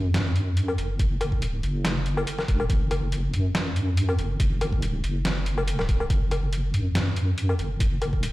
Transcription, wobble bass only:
0, 0, Header, 1, 2, 480
1, 0, Start_track
1, 0, Tempo, 425532
1, 1121, Time_signature, 4, 2, 24, 8
1, 9389, End_track
2, 0, Start_track
2, 0, Title_t, "Wobble bass"
2, 0, Program_c, 0, 39
2, 0, Note_on_c, 0, 42, 98
2, 864, Note_off_c, 0, 42, 0
2, 882, Note_on_c, 0, 30, 95
2, 1824, Note_off_c, 0, 30, 0
2, 1842, Note_on_c, 0, 30, 92
2, 2544, Note_off_c, 0, 30, 0
2, 2802, Note_on_c, 0, 28, 96
2, 3024, Note_off_c, 0, 28, 0
2, 3042, Note_on_c, 0, 30, 101
2, 3744, Note_off_c, 0, 30, 0
2, 3762, Note_on_c, 0, 42, 97
2, 4704, Note_off_c, 0, 42, 0
2, 4722, Note_on_c, 0, 30, 92
2, 5664, Note_off_c, 0, 30, 0
2, 5682, Note_on_c, 0, 30, 98
2, 6864, Note_off_c, 0, 30, 0
2, 6881, Note_on_c, 0, 30, 102
2, 7584, Note_off_c, 0, 30, 0
2, 7601, Note_on_c, 0, 42, 96
2, 8543, Note_off_c, 0, 42, 0
2, 8561, Note_on_c, 0, 30, 90
2, 9389, Note_off_c, 0, 30, 0
2, 9389, End_track
0, 0, End_of_file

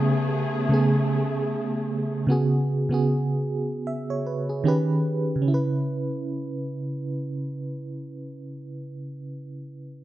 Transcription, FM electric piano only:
0, 0, Header, 1, 2, 480
1, 0, Start_track
1, 0, Key_signature, 4, "minor"
1, 0, Tempo, 789474
1, 1392, Time_signature, 4, 2, 24, 8
1, 6106, End_track
2, 0, Start_track
2, 0, Title_t, "FM electric piano"
2, 0, Program_c, 0, 5
2, 0, Control_c, 0, 64, 127
2, 0, Note_on_c, 0, 49, 79
2, 0, Note_on_c, 0, 57, 76
2, 0, Note_on_c, 0, 59, 75
2, 0, Note_on_c, 0, 67, 69
2, 0, Note_on_c, 0, 68, 88
2, 382, Note_off_c, 0, 49, 0
2, 387, Note_off_c, 0, 57, 0
2, 391, Note_off_c, 0, 59, 0
2, 416, Note_off_c, 0, 68, 0
2, 418, Note_on_c, 0, 49, 87
2, 428, Note_on_c, 0, 57, 77
2, 438, Note_on_c, 0, 59, 75
2, 447, Note_on_c, 0, 68, 93
2, 1315, Note_off_c, 0, 49, 0
2, 1319, Note_off_c, 0, 57, 0
2, 1324, Note_off_c, 0, 59, 0
2, 1329, Note_off_c, 0, 68, 0
2, 1379, Note_on_c, 0, 49, 85
2, 1389, Note_on_c, 0, 59, 74
2, 1398, Note_on_c, 0, 66, 76
2, 1399, Control_c, 0, 64, 0
2, 1400, Note_off_c, 0, 67, 0
2, 1407, Note_on_c, 0, 68, 90
2, 1507, Control_c, 0, 64, 127
2, 1728, Note_off_c, 0, 49, 0
2, 1733, Note_off_c, 0, 59, 0
2, 1738, Note_off_c, 0, 66, 0
2, 1742, Note_off_c, 0, 68, 0
2, 1758, Note_on_c, 0, 49, 76
2, 1768, Note_on_c, 0, 59, 75
2, 1777, Note_on_c, 0, 66, 74
2, 1787, Note_on_c, 0, 68, 90
2, 2301, Note_off_c, 0, 49, 0
2, 2306, Note_off_c, 0, 59, 0
2, 2311, Note_off_c, 0, 66, 0
2, 2316, Note_off_c, 0, 68, 0
2, 2353, Note_on_c, 0, 76, 59
2, 2485, Note_off_c, 0, 76, 0
2, 2494, Note_on_c, 0, 73, 66
2, 2588, Note_off_c, 0, 73, 0
2, 2593, Note_on_c, 0, 71, 62
2, 2725, Note_off_c, 0, 71, 0
2, 2732, Note_on_c, 0, 68, 63
2, 2819, Note_on_c, 0, 51, 85
2, 2829, Note_on_c, 0, 61, 77
2, 2838, Note_on_c, 0, 67, 78
2, 2839, Control_c, 0, 64, 0
2, 2847, Note_on_c, 0, 71, 94
2, 2933, Control_c, 0, 64, 127
2, 2960, Note_off_c, 0, 68, 0
2, 3257, Note_on_c, 0, 49, 73
2, 3270, Note_off_c, 0, 51, 0
2, 3275, Note_off_c, 0, 61, 0
2, 3279, Note_off_c, 0, 67, 0
2, 3284, Note_off_c, 0, 71, 0
2, 3294, Note_on_c, 0, 61, 64
2, 3321, Control_c, 0, 64, 0
2, 3332, Note_on_c, 0, 64, 65
2, 3369, Note_on_c, 0, 71, 80
2, 3415, Control_c, 0, 64, 127
2, 5136, Note_off_c, 0, 49, 0
2, 5174, Note_off_c, 0, 61, 0
2, 5212, Note_off_c, 0, 64, 0
2, 5249, Note_off_c, 0, 71, 0
2, 6106, End_track
0, 0, End_of_file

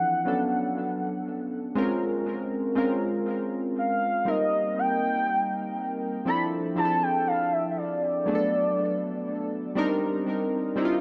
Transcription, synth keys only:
0, 0, Header, 1, 2, 480
1, 0, Start_track
1, 0, Tempo, 1000000
1, 127, Time_signature, 4, 2, 24, 8
1, 5283, End_track
2, 0, Start_track
2, 0, Title_t, "Synth keys"
2, 0, Program_c, 0, 88
2, 0, Control_c, 0, 64, 127
2, 0, Note_on_c, 0, 52, 66
2, 0, Note_on_c, 0, 53, 79
2, 0, Note_on_c, 0, 60, 70
2, 0, Note_on_c, 0, 62, 72
2, 0, Note_on_c, 0, 64, 71
2, 0, Note_on_c, 0, 69, 83
2, 120, Note_on_c, 0, 54, 77
2, 124, Note_on_c, 0, 59, 70
2, 127, Note_on_c, 0, 61, 72
2, 131, Note_off_c, 0, 62, 0
2, 131, Note_on_c, 0, 62, 70
2, 133, Control_c, 0, 64, 0
2, 134, Note_off_c, 0, 64, 0
2, 134, Note_off_c, 0, 69, 0
2, 134, Note_on_c, 0, 69, 86
2, 135, Note_off_c, 0, 53, 0
2, 136, Note_off_c, 0, 52, 0
2, 137, Note_off_c, 0, 60, 0
2, 211, Control_c, 0, 64, 127
2, 842, Note_on_c, 0, 56, 99
2, 843, Note_off_c, 0, 61, 0
2, 844, Note_off_c, 0, 54, 0
2, 845, Note_on_c, 0, 60, 91
2, 846, Note_off_c, 0, 59, 0
2, 849, Note_off_c, 0, 62, 0
2, 849, Note_on_c, 0, 61, 86
2, 851, Note_off_c, 0, 69, 0
2, 852, Control_c, 0, 64, 0
2, 853, Note_on_c, 0, 65, 81
2, 856, Note_on_c, 0, 70, 101
2, 940, Control_c, 0, 64, 127
2, 1229, Note_off_c, 0, 56, 0
2, 1230, Note_off_c, 0, 60, 0
2, 1232, Note_off_c, 0, 61, 0
2, 1234, Note_off_c, 0, 65, 0
2, 1236, Note_off_c, 0, 70, 0
2, 1322, Note_on_c, 0, 56, 91
2, 1325, Note_on_c, 0, 60, 87
2, 1328, Note_on_c, 0, 61, 81
2, 1332, Note_on_c, 0, 65, 82
2, 1336, Note_on_c, 0, 70, 98
2, 1892, Note_off_c, 0, 56, 0
2, 1894, Note_off_c, 0, 60, 0
2, 1896, Note_off_c, 0, 61, 0
2, 1897, Note_off_c, 0, 65, 0
2, 1899, Note_off_c, 0, 70, 0
2, 2040, Note_on_c, 0, 55, 76
2, 2044, Note_on_c, 0, 60, 72
2, 2047, Note_on_c, 0, 58, 67
2, 2051, Note_on_c, 0, 63, 67
2, 2053, Control_c, 0, 64, 0
2, 2055, Note_on_c, 0, 70, 88
2, 2127, Control_c, 0, 64, 127
2, 2801, Note_off_c, 0, 55, 0
2, 2803, Note_off_c, 0, 60, 0
2, 2805, Note_off_c, 0, 58, 0
2, 2806, Note_off_c, 0, 63, 0
2, 2808, Note_off_c, 0, 70, 0
2, 3001, Note_on_c, 0, 53, 78
2, 3005, Note_on_c, 0, 60, 75
2, 3009, Note_on_c, 0, 62, 72
2, 3012, Note_on_c, 0, 64, 73
2, 3014, Control_c, 0, 64, 0
2, 3015, Note_on_c, 0, 69, 85
2, 3102, Control_c, 0, 64, 127
2, 3196, Note_off_c, 0, 53, 0
2, 3198, Note_off_c, 0, 60, 0
2, 3200, Note_off_c, 0, 62, 0
2, 3201, Note_off_c, 0, 64, 0
2, 3203, Note_off_c, 0, 69, 0
2, 3242, Note_on_c, 0, 53, 73
2, 3246, Note_on_c, 0, 60, 69
2, 3249, Note_on_c, 0, 62, 73
2, 3253, Note_on_c, 0, 64, 67
2, 3256, Note_on_c, 0, 68, 69
2, 3283, Note_off_c, 0, 68, 0
2, 3288, Note_on_c, 0, 69, 89
2, 3813, Note_off_c, 0, 53, 0
2, 3815, Note_off_c, 0, 60, 0
2, 3816, Note_off_c, 0, 62, 0
2, 3818, Note_off_c, 0, 64, 0
2, 3835, Note_off_c, 0, 69, 0
2, 3963, Note_on_c, 0, 54, 79
2, 3966, Note_on_c, 0, 59, 66
2, 3970, Note_on_c, 0, 57, 68
2, 3973, Note_on_c, 0, 62, 72
2, 3974, Control_c, 0, 64, 0
2, 3977, Note_on_c, 0, 68, 69
2, 4003, Note_off_c, 0, 68, 0
2, 4008, Note_on_c, 0, 69, 85
2, 4070, Control_c, 0, 64, 127
2, 4682, Note_on_c, 0, 55, 92
2, 4683, Note_off_c, 0, 62, 0
2, 4685, Note_off_c, 0, 54, 0
2, 4686, Note_on_c, 0, 60, 82
2, 4687, Note_off_c, 0, 59, 0
2, 4689, Note_off_c, 0, 57, 0
2, 4689, Note_on_c, 0, 62, 82
2, 4693, Control_c, 0, 64, 0
2, 4693, Note_on_c, 0, 63, 85
2, 4696, Note_on_c, 0, 70, 103
2, 4708, Note_off_c, 0, 69, 0
2, 4788, Control_c, 0, 64, 127
2, 5069, Note_off_c, 0, 55, 0
2, 5071, Note_off_c, 0, 60, 0
2, 5072, Note_off_c, 0, 62, 0
2, 5074, Note_off_c, 0, 63, 0
2, 5076, Note_off_c, 0, 70, 0
2, 5163, Note_on_c, 0, 55, 92
2, 5167, Note_on_c, 0, 60, 81
2, 5170, Note_on_c, 0, 62, 81
2, 5174, Note_on_c, 0, 63, 84
2, 5177, Note_on_c, 0, 64, 84
2, 5203, Note_off_c, 0, 64, 0
2, 5208, Note_on_c, 0, 65, 94
2, 5283, Note_off_c, 0, 55, 0
2, 5283, Note_off_c, 0, 60, 0
2, 5283, Note_off_c, 0, 62, 0
2, 5283, Note_off_c, 0, 63, 0
2, 5283, Note_off_c, 0, 65, 0
2, 5283, End_track
0, 0, End_of_file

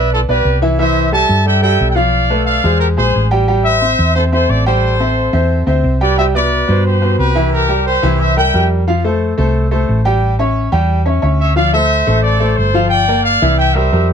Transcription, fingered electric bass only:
0, 0, Header, 1, 2, 480
1, 0, Start_track
1, 0, Tempo, 336700
1, 1123, Time_signature, 4, 2, 24, 8
1, 20144, End_track
2, 0, Start_track
2, 0, Title_t, "Fingered electric bass"
2, 0, Program_c, 0, 33
2, 0, Note_on_c, 0, 35, 102
2, 370, Note_off_c, 0, 35, 0
2, 404, Note_on_c, 0, 35, 72
2, 626, Note_off_c, 0, 35, 0
2, 637, Note_on_c, 0, 36, 88
2, 1760, Note_off_c, 0, 36, 0
2, 1840, Note_on_c, 0, 43, 101
2, 2511, Note_off_c, 0, 43, 0
2, 2569, Note_on_c, 0, 35, 99
2, 3686, Note_off_c, 0, 35, 0
2, 3761, Note_on_c, 0, 40, 97
2, 4209, Note_off_c, 0, 40, 0
2, 4245, Note_on_c, 0, 34, 71
2, 4468, Note_off_c, 0, 34, 0
2, 4496, Note_on_c, 0, 33, 92
2, 5610, Note_off_c, 0, 33, 0
2, 5683, Note_on_c, 0, 40, 99
2, 6354, Note_off_c, 0, 40, 0
2, 6399, Note_on_c, 0, 33, 90
2, 7522, Note_off_c, 0, 33, 0
2, 7599, Note_on_c, 0, 40, 93
2, 8049, Note_off_c, 0, 40, 0
2, 8077, Note_on_c, 0, 38, 77
2, 8304, Note_off_c, 0, 38, 0
2, 8323, Note_on_c, 0, 36, 93
2, 9444, Note_off_c, 0, 36, 0
2, 9531, Note_on_c, 0, 43, 100
2, 10199, Note_off_c, 0, 43, 0
2, 10244, Note_on_c, 0, 36, 96
2, 11365, Note_off_c, 0, 36, 0
2, 11445, Note_on_c, 0, 36, 99
2, 12116, Note_off_c, 0, 36, 0
2, 12174, Note_on_c, 0, 41, 88
2, 13290, Note_off_c, 0, 41, 0
2, 13374, Note_on_c, 0, 36, 104
2, 14041, Note_off_c, 0, 36, 0
2, 14093, Note_on_c, 0, 33, 92
2, 15210, Note_off_c, 0, 33, 0
2, 15287, Note_on_c, 0, 40, 102
2, 15957, Note_off_c, 0, 40, 0
2, 16004, Note_on_c, 0, 38, 92
2, 17125, Note_off_c, 0, 38, 0
2, 17209, Note_on_c, 0, 33, 102
2, 17878, Note_off_c, 0, 33, 0
2, 17936, Note_on_c, 0, 31, 90
2, 19050, Note_off_c, 0, 31, 0
2, 19131, Note_on_c, 0, 36, 99
2, 19798, Note_off_c, 0, 36, 0
2, 19851, Note_on_c, 0, 41, 94
2, 20144, Note_off_c, 0, 41, 0
2, 20144, End_track
0, 0, End_of_file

